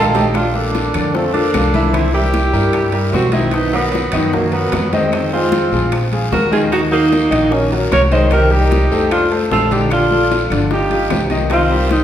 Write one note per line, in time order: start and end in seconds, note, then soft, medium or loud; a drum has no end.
0.00 0.88 A#1 medium
0.00 0.11 D#3 medium
0.00 0.12 G3 medium
0.00 0.12 A3 soft
0.00 0.12 D4 medium
0.00 0.23 A4 medium
0.00 0.23 D#5 medium
0.00 0.23 F5 medium
0.00 0.23 A5 medium
0.15 0.33 D#4 medium
0.15 0.34 G4 medium
0.15 high conga medium
0.15 low timbale loud
0.15 low agogo medium
0.15 short guiro medium
0.34 0.56 D4 medium
0.34 0.57 F4 medium
0.34 high bongo medium
0.34 high conga soft
0.34 high timbale medium
0.34 long guiro medium
0.34 claves medium
0.54 0.87 F3 medium
0.54 1.17 A#3 medium
0.54 1.15 D4 medium
0.54 0.87 F4 medium
0.54 0.88 A4 medium
0.54 high bongo soft
0.54 high conga soft
0.75 high bongo medium
0.75 high conga medium
0.75 high timbale medium
0.75 low timbale medium
0.75 short guiro medium
0.94 1.50 F2 medium
0.94 1.11 D3 medium
0.94 1.11 D4 medium
0.94 1.11 D5 medium
0.94 high bongo soft
0.94 high conga soft
0.94 low conga medium
0.94 high timbale loud
0.94 short guiro medium
0.94 claves medium
1.14 1.30 F3 medium
1.14 1.33 A3 medium
1.14 1.33 C4 medium
1.14 1.31 F4 medium
1.14 1.31 A4 medium
1.14 high bongo medium
1.14 high conga soft
1.14 long guiro medium
1.34 1.66 F3 medium
1.34 1.94 A#3 medium
1.34 1.95 D4 medium
1.34 1.67 F4 medium
1.34 1.67 A4 medium
1.34 high conga soft
1.34 high timbale medium
1.54 2.47 C2 medium
1.54 high bongo medium
1.54 low bongo medium
1.54 high conga medium
1.54 high timbale medium
1.54 low timbale medium
1.54 short guiro medium
1.54 claves medium
1.74 1.90 E3 medium
1.74 1.91 E4 medium
1.74 1.91 E5 loud
1.74 high bongo soft
1.74 high conga medium
1.74 high timbale medium
1.74 short guiro medium
1.93 2.10 E3 medium
1.93 2.13 C4 medium
1.93 2.10 E4 medium
1.93 2.14 E4 medium
1.93 2.10 E5 medium
1.93 high bongo medium
1.93 high conga soft
1.93 high timbale medium
1.93 long guiro medium
1.93 claves medium
2.13 2.46 G3 medium
2.13 3.09 E4 medium
2.13 2.46 G4 medium
2.13 3.10 G4 loud
2.13 2.47 A#4 medium
2.13 high bongo soft
2.13 high conga soft
2.34 high bongo medium
2.34 high conga medium
2.34 high timbale medium
2.34 low timbale medium
2.34 short guiro medium
2.53 3.09 G2 medium
2.53 2.86 G3 medium
2.53 2.86 G4 medium
2.53 2.86 A#4 medium
2.53 high bongo soft
2.53 high conga soft
2.53 short guiro medium
2.73 high bongo medium
2.73 high conga soft
2.73 high timbale medium
2.73 long guiro medium
2.73 claves medium
2.92 3.25 G3 medium
2.92 3.26 G4 medium
2.92 3.26 A#4 medium
2.92 high conga soft
2.92 high timbale medium
3.12 4.07 B1 medium
3.12 3.33 C4 medium
3.12 3.35 F#4 medium
3.12 high bongo medium
3.12 low bongo medium
3.12 high conga medium
3.12 low timbale medium
3.12 short guiro medium
3.32 3.65 D#3 medium
3.32 3.55 C4 medium
3.32 3.66 D#4 medium
3.32 3.55 E4 medium
3.32 3.66 D#5 medium
3.32 high bongo soft
3.32 high conga medium
3.32 high timbale medium
3.32 short guiro medium
3.51 3.72 B3 medium
3.51 3.73 D#4 medium
3.51 high bongo medium
3.51 high conga soft
3.51 high timbale medium
3.51 long guiro medium
3.51 claves medium
3.72 4.05 F#3 medium
3.72 4.33 F#3 medium
3.72 4.36 B3 medium
3.72 4.06 F#4 medium
3.72 4.06 A#4 medium
3.72 high bongo soft
3.72 high conga soft
3.92 high bongo medium
3.92 high conga medium
3.92 high timbale medium
3.92 low timbale medium
3.92 short guiro medium
4.12 4.68 F#2 loud
4.12 4.29 D#3 loud
4.12 4.29 D#4 medium
4.12 4.30 D#5 medium
4.12 high bongo soft
4.12 high conga soft
4.12 low conga medium
4.12 high timbale loud
4.12 short guiro medium
4.12 claves medium
4.33 4.49 F#3 medium
4.33 4.53 F#3 medium
4.33 4.55 A#3 medium
4.33 4.49 F#4 medium
4.33 4.50 A#4 medium
4.33 high bongo medium
4.33 high conga soft
4.33 low conga medium
4.33 long guiro medium
4.52 4.94 F#3 medium
4.52 4.86 F#3 medium
4.52 4.95 B3 loud
4.52 4.86 F#4 medium
4.52 4.86 A#4 medium
4.52 high conga soft
4.52 high timbale medium
4.72 5.66 F2 medium
4.72 high bongo medium
4.72 low bongo medium
4.72 high conga medium
4.72 high timbale medium
4.72 low timbale medium
4.72 short guiro medium
4.72 claves medium
4.92 5.09 D#3 medium
4.92 5.32 G#3 medium
4.92 5.32 C4 medium
4.92 5.09 D#4 medium
4.92 5.10 D#5 medium
4.92 high bongo soft
4.92 high conga medium
4.92 high timbale medium
4.92 short guiro medium
5.12 5.29 D#3 medium
5.12 5.29 D#4 medium
5.12 5.29 D#5 medium
5.12 high bongo medium
5.12 high conga soft
5.12 high timbale medium
5.12 long guiro medium
5.12 claves medium
5.33 5.66 G#3 medium
5.33 6.01 C4 medium
5.33 6.01 F4 medium
5.33 5.66 G#4 medium
5.33 5.66 C5 medium
5.33 high bongo soft
5.33 high conga soft
5.52 high bongo medium
5.52 high conga loud
5.52 high timbale medium
5.52 low timbale medium
5.52 short guiro medium
5.72 6.28 A#1 loud
5.72 6.05 F3 medium
5.72 6.05 F4 medium
5.72 6.05 G#4 medium
5.72 high bongo soft
5.72 high conga soft
5.72 short guiro medium
5.92 high bongo medium
5.92 high conga soft
5.92 high timbale medium
5.92 long guiro medium
5.92 claves medium
6.12 6.45 F3 medium
6.12 6.45 F4 medium
6.12 6.45 G#4 medium
6.12 high conga soft
6.12 high timbale medium
6.31 7.25 D#2 medium
6.31 6.51 F#4 medium
6.31 6.51 A#4 loud
6.31 high bongo medium
6.31 low bongo medium
6.31 high conga medium
6.31 low timbale medium
6.31 short guiro medium
6.51 6.84 D#3 medium
6.51 6.85 D#4 medium
6.51 6.61 F4 medium
6.51 6.62 G#4 medium
6.51 6.85 D#5 medium
6.51 high bongo soft
6.51 high conga medium
6.51 high timbale medium
6.51 short guiro medium
6.72 6.81 D#4 medium
6.72 6.82 F#4 medium
6.72 high bongo medium
6.72 high timbale medium
6.72 long guiro medium
6.72 claves medium
6.91 7.24 F#3 medium
6.91 7.52 A#3 medium
6.91 7.54 D#4 loud
6.91 7.24 F#4 medium
6.91 7.24 A#4 medium
6.91 high bongo soft
6.91 high conga soft
7.12 high bongo medium
7.12 high conga medium
7.12 high timbale medium
7.12 low timbale medium
7.12 short guiro medium
7.30 7.87 A#1 medium
7.30 7.47 D#3 medium
7.30 7.47 D#4 medium
7.30 7.48 D#5 medium
7.30 high bongo soft
7.30 high conga soft
7.30 low conga medium
7.30 high timbale loud
7.30 short guiro medium
7.30 claves medium
7.50 7.67 F#3 medium
7.50 7.72 A#3 medium
7.50 7.72 C#4 loud
7.50 7.67 F#4 medium
7.50 7.68 A#4 medium
7.50 high bongo medium
7.50 high conga soft
7.50 long guiro medium
7.72 8.05 F#3 medium
7.72 8.05 F#4 medium
7.72 8.05 A#4 medium
7.72 high conga soft
7.72 high timbale medium
7.91 8.85 C2 medium
7.91 8.01 A#4 medium
7.91 8.02 C#5 loud
7.91 high bongo medium
7.91 low bongo medium
7.91 high conga medium
7.91 high timbale medium
7.91 low timbale medium
7.91 short guiro medium
7.91 claves medium
8.11 8.28 D#3 medium
8.11 8.28 D#4 medium
8.11 8.31 G#4 medium
8.11 8.30 C5 loud
8.11 8.28 D#5 medium
8.11 high bongo soft
8.11 high conga medium
8.11 high timbale medium
8.11 short guiro medium
8.31 8.48 D#3 medium
8.31 8.48 D#4 medium
8.31 8.55 G4 loud
8.31 8.53 A#4 medium
8.31 8.48 D#5 medium
8.31 high bongo medium
8.31 high conga soft
8.31 high timbale medium
8.31 long guiro medium
8.31 claves medium
8.51 8.84 G3 medium
8.51 9.12 D#4 medium
8.51 9.11 G4 loud
8.51 8.85 G4 medium
8.51 8.85 A#4 medium
8.51 high bongo soft
8.51 high conga soft
8.71 high bongo medium
8.71 high conga loud
8.71 high timbale medium
8.71 low timbale medium
8.71 short guiro medium
8.91 9.47 F2 medium
8.91 9.24 A3 medium
8.91 9.24 A4 medium
8.91 9.24 C5 medium
8.91 high bongo soft
8.91 high conga soft
8.91 short guiro medium
9.11 9.31 D4 medium
9.11 9.30 F4 loud
9.11 high bongo medium
9.11 high conga soft
9.11 high timbale loud
9.11 long guiro medium
9.11 claves medium
9.31 9.64 A3 medium
9.31 9.64 A4 medium
9.31 9.64 C5 medium
9.31 high conga soft
9.31 high timbale medium
9.50 10.44 A#1 medium
9.50 9.73 F4 medium
9.50 9.74 A4 loud
9.50 high bongo medium
9.50 low bongo medium
9.50 high conga medium
9.50 low timbale medium
9.50 short guiro medium
9.70 10.03 D3 medium
9.70 10.04 D4 medium
9.70 9.91 D#4 medium
9.70 9.92 G4 medium
9.70 10.04 D5 medium
9.70 high bongo soft
9.70 high conga medium
9.70 high timbale medium
9.70 short guiro medium
9.90 10.48 D4 medium
9.90 10.48 F4 loud
9.90 high bongo medium
9.90 high conga soft
9.90 high timbale medium
9.90 long guiro medium
9.90 claves medium
10.11 10.44 F3 medium
10.11 10.44 F4 medium
10.11 10.44 A4 medium
10.11 high bongo soft
10.11 high conga soft
10.31 high bongo medium
10.31 high conga medium
10.31 high timbale medium
10.31 low timbale medium
10.31 short guiro medium
10.50 11.06 G1 medium
10.50 10.67 D3 medium
10.50 10.67 D4 medium
10.50 10.68 D5 medium
10.50 high bongo soft
10.50 high conga soft
10.50 low conga medium
10.50 high timbale loud
10.50 short guiro medium
10.50 claves medium
10.71 10.87 F3 medium
10.71 11.27 D#4 medium
10.71 10.87 F4 medium
10.71 10.87 G4 medium
10.71 11.28 G4 loud
10.71 high bongo medium
10.71 high conga soft
10.71 long guiro medium
10.90 11.23 F3 medium
10.90 11.23 F4 medium
10.90 11.23 G4 medium
10.90 high conga soft
10.90 high timbale medium
11.09 12.04 C2 medium
11.09 high bongo medium
11.09 low bongo medium
11.09 high conga medium
11.09 high timbale medium
11.09 low timbale medium
11.09 short guiro medium
11.09 claves medium
11.30 11.46 D#3 medium
11.30 11.47 D#4 medium
11.30 11.47 D#5 medium
11.30 high bongo soft
11.30 high conga medium
11.30 high timbale medium
11.30 short guiro medium
11.50 11.67 D#3 medium
11.50 11.88 C4 medium
11.50 11.67 D#4 medium
11.50 11.89 F4 loud
11.50 11.67 D#5 medium
11.50 high bongo medium
11.50 high conga soft
11.50 high timbale medium
11.50 long guiro medium
11.50 claves medium
11.70 12.03 G3 medium
11.70 12.03 G4 medium
11.70 12.03 A#4 medium
11.70 high bongo soft
11.70 high conga soft
11.89 12.04 C4 medium
11.89 12.04 D#4 medium
11.89 high bongo medium
11.89 high conga medium
11.89 high timbale medium
11.89 low timbale medium
11.89 short guiro medium